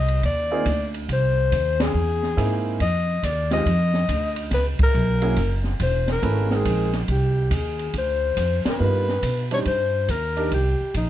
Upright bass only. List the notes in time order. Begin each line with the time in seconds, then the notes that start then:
Already playing: C2
0.23 D#2
0.66 D2
1.09 C2
1.52 D#2
1.94 E2
2.37 G#2
2.80 F2
3.23 D#2
3.66 F2
4.09 D2
4.51 C#2
4.79 muted upright bass stroke
4.94 B1
5.37 F#1
5.80 E1
6.22 G#1
6.65 A#1
7.08 C2
7.51 D#2
7.94 D2
8.37 F2
8.65 muted upright bass stroke
8.80 G2
9.22 B2
9.66 G2
10.09 D#2
10.52 C2
10.81 muted upright bass stroke
10.94 A#1